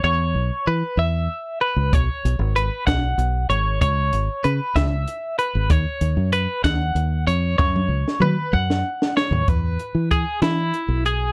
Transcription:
<<
  \new Staff \with { instrumentName = "Clean electric guitar" } { \time 6/8 \key e \major \tempo 4. = 64 cis''4 b'8 e''4 b'8 | cis''4 b'8 fis''4 cis''8 | cis''4 b'8 e''4 b'8 | cis''4 b'8 fis''4 cis''8 |
cis''4 b'8 fis''4 cis''8 | b'4 gis'8 e'4 gis'8 | }
  \new Staff \with { instrumentName = "Fingered electric bass" } { \clef bass \time 6/8 \key e \major e,8 b,,16 r16 e16 r16 e,8 r8. cis,16 | b,,16 r16 b,,16 gis,,8 r16 b,,8 b,,8 gis,,8 | cis,8 gis,,16 r16 cis16 r16 cis,8 r8. gis,,16 | dis,16 r16 dis,16 fis,8 r16 dis,8 dis,8 eis,8 |
fis,8 cis,16 r16 fis16 r16 fis,8 r8. dis,16 | e,8 r16 e8 r16 e8 r16 b,,8. | }
  \new DrumStaff \with { instrumentName = "Drums" } \drummode { \time 6/8 r4. r4. | <hh bd>8 hh8 hh8 <hh bd sn>8 hh8 hh8 | <hh bd>8 hh8 hh8 <hh bd sn>8 hh8 hh8 | <hh bd>8 hh8 hh8 <hh bd sn>8 hh8 hh8 |
<bd tommh>16 tommh8 sn16 toml8 bd16 sn8 sn16 sn16 tomfh16 | <hh bd>8 hh8 <hh bd>8 <hh sn>8 hh8 hh8 | }
>>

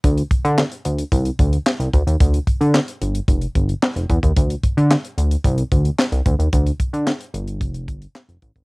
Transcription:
<<
  \new Staff \with { instrumentName = "Analog synth bass" } { \clef bass \time 4/4 \key c \mixolydian \tempo 4 = 111 d,8 r16 d8 r16 d,8 c,8 d,8 r16 c,16 d,16 ees,16 | d,8 r16 d8 r16 g,,8 f,,8 g,,8 r16 f,,16 e,16 ees,16 | d,8 r16 d8 r16 d,8 c,8 d,8 r16 c,16 d,16 ees,16 | d,8 r16 d8 r16 g,,8 f,,8 g,,8 r16 f,,16 a,,16 gis,,16 | }
  \new DrumStaff \with { instrumentName = "Drums" } \drummode { \time 4/4 <hh bd>16 hh16 <hh bd>16 hh16 <hc sn>16 hh16 hh16 hh16 <hh bd>16 hh16 <hh bd>16 hh16 <hc sn>16 hh16 <hh bd>16 hh16 | <hh bd>16 hh16 <hh bd>16 hh16 <hc sn>16 hh16 hh16 hh16 <hh bd>16 hh16 <hh bd>16 hh16 <hc sn>16 hh16 <hh bd>16 <hh bd>16 | <hh bd>16 hh16 <hh bd>16 hh16 <hc sn>16 hh16 hh16 hh16 <hh bd>16 hh16 <hh bd>16 hh16 <hc sn>16 hh16 <hh bd>16 hh16 | <hh bd>16 hh16 <hh bd>16 hh16 <hc sn>16 hh16 hh16 hh16 <hh bd>16 hh16 <hh bd>16 hh16 <hc sn>16 hh16 <hh bd>16 <hh bd>16 | }
>>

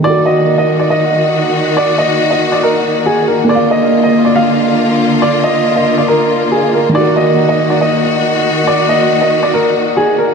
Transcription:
<<
  \new Staff \with { instrumentName = "Upright piano" } { \time 4/4 \key ees \minor \tempo 4 = 139 d''8 ees''8. ees''8 d''16 ees''2 | d''8 ees''8. ees''8 d''16 bes'4 aes'8 bes'8 | d''8 ees''8. ees''8 d''16 f''2 | d''8 ees''8. ees''8 d''16 bes'4 aes'8 bes'8 |
d''8 ees''8. ees''8 d''16 ees''2 | d''8 ees''8. ees''8 d''16 bes'4 aes'8 bes'8 | }
  \new Staff \with { instrumentName = "Felt piano" } { \time 4/4 \key ees \minor <ees ees' ges' bes'>1~ | <ees ees' ges' bes'>1 | <bes bes' f''>1~ | <bes bes' f''>1 |
<ees ees' ges' bes'>1~ | <ees ees' ges' bes'>1 | }
  \new Staff \with { instrumentName = "String section" } { \time 4/4 \key ees \minor << { <ees ges'>1~ | <ees ges'>1 | <d f'>1~ | <d f'>1 |
<ees ges'>1~ | <ees ges'>1 | } \\ { bes1~ | bes1~ | bes1~ | bes1~ |
bes1~ | bes1 | } >> }
>>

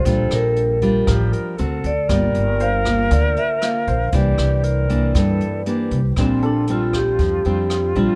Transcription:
<<
  \new Staff \with { instrumentName = "Grand piano" } { \time 4/4 \key c \mixolydian \tempo 4 = 118 c''8 r4. bes'4. r8 | r4 c''2~ c''8 c''8~ | c''8 r2. r8 | \key bes \lydian r8 a'2~ a'8 r4 | }
  \new Staff \with { instrumentName = "Vibraphone" } { \time 4/4 \key c \mixolydian c''8 bes'4. r4. d''8~ | d''4 f''4 d''8 e''8 f''4 | d''2. r4 | \key bes \lydian c'8 d'8 f'8 g'2 f'8 | }
  \new Staff \with { instrumentName = "Flute" } { \time 4/4 \key c \mixolydian a'4. r8 g'8 bes'8 a'4 | bes'1 | g'4 bes'4 a'4 g'4 | \key bes \lydian f'1 | }
  \new Staff \with { instrumentName = "Nylon-string guitar" } { \time 4/4 \key c \mixolydian << { <g d' f'>4. <g d' f'>4. <c' fis'>8 r8 | <bes f'>4. <bes f'>4. <bes f'>8 r8 | <e bes d'>4. <e bes d'>4. <e bes d'>8 r8 | \key bes \lydian <g c' d'>4 <g c' d'>4. <g c' d'>4 <g c' d'>8 | } \\ { bes,2 f4 r4 | g2 d2 | c2 g,2 | bes,2 f2 | } >> }
  \new Staff \with { instrumentName = "Upright bass" } { \clef bass \time 4/4 \key c \mixolydian bes,,8 bes,,4. a,,8 r8 d,8 d,8 | g,,8 g,,4. d,8 r4 bes,,8 | c,8 c,4. g,8 r4 c,8 | \key bes \lydian bes,,2 f,8 f,4 bes,,16 r16 | }
  \new DrumStaff \with { instrumentName = "Drums" } \drummode { \time 4/4 <hh bd>8 <hh ss>8 hh8 <hh bd>8 <hh bd ss>8 hh8 hh8 <hh bd>8 | <hh bd ss>8 hh8 hh8 <hh bd ss>8 <hh bd>8 hh8 <hh ss>8 <hh bd>8 | <hh bd>8 <hh ss>8 hh8 <hh bd>8 <hh bd ss>8 hh8 hh8 <hh bd>8 | <hh bd ss>8 hh8 hh8 <hh bd ss>8 <hh bd>8 hh8 <hh ss>8 <hh bd>8 | }
>>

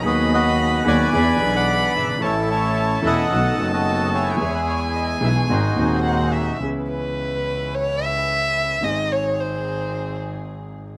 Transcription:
<<
  \new Staff \with { instrumentName = "Violin" } { \time 4/4 \key e \major \tempo 4 = 110 b''2 b''2 | a''2 a''4.~ a''16. g''32 | gis''2. fis''8 e''8 | \key gis \phrygian r8 b'4. cis''8 e''4. |
dis''8 cis''8 bis'4. r4. | }
  \new Staff \with { instrumentName = "Bandoneon" } { \time 4/4 \key e \major << { dis''8 dis''4 gis''4~ gis''16 fis''8. e''8 | cis''8 cis''4 fis''4~ fis''16 dis''8. cis''8~ | cis''16 b'16 cis''8 dis''8 e''16 cis''16 bis'4. r8 | \key gis \phrygian r1 |
r1 | } \\ { <fis' b'>8 <fis' b'>4 <b' d''>4~ <b' d''>16 <b' d''>4~ <b' d''>16 | <e' a'>8 <e' a'>4 <a' dis''>4~ <a' dis''>16 <fis' a'>8. <e' gis'>8~ | <e' gis'>4. r8 <dis' fis'>2 | r1 |
r1 | } >> }
  \new Staff \with { instrumentName = "String section" } { \time 4/4 \key e \major <b fis' gis'>4. <b fis' gis'>8 <d' e' gis'>8 <d' e' gis'>4. | <cis' e' a'>4. <cis' e' a'>8 <b dis' a'>8 <b dis' a'>4. | <b e' gis'>4. <b e' gis'>8 <bis fis' gis'>8 <bis fis' gis'>4. | \key gis \phrygian <cis' e' b'>1 |
<bis dis' gis'>1 | }
  \new Staff \with { instrumentName = "Grand piano" } { \clef bass \time 4/4 \key e \major << { <dis, dis fis b dis' gis'>4. <dis, dis fis b dis' gis'>8 <e, e b d' gis'>8 <b,, b, e b d' gis'>4. | <a,, a, e a cis' a'>4. <e,, e, e a cis' a'>8 <b,, b, dis a b fis'>8 <fis,, fis, dis a b fis'>4. | <e, e gis b gis'>4. <b,, b, e gis b gis'>8 <gis,, gis, dis gis bis fis'>8 <dis,, dis, dis gis bis fis'>4. | \key gis \phrygian <cis, cis e b cis' gis'>1 |
<gis,, gis, dis gis bis gis'>1 | } \\ { r2. r8 r32 fis,,32 g,,32 gis,,32 | r1 | r1 | r1 |
r1 | } >> }
  \new Staff \with { instrumentName = "Double bass" } { \clef bass \time 4/4 \key e \major dis,4. dis,8 e,8 b,,4 g,,8 | a,,4. e,,8 b,,8 fis,,4. | e,4. b,,8 gis,,8 dis,4. | \key gis \phrygian cis,1 |
gis,,1 | }
>>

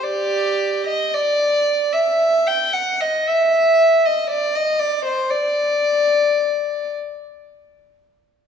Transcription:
\new Staff \with { instrumentName = "Violin" } { \time 4/4 \key d \phrygian \tempo 4 = 56 <g' d''>8. ees''16 d''8. e''8 g''16 fis''16 ees''16 e''8. ees''16 | d''16 ees''16 d''16 c''16 d''4. r4. | }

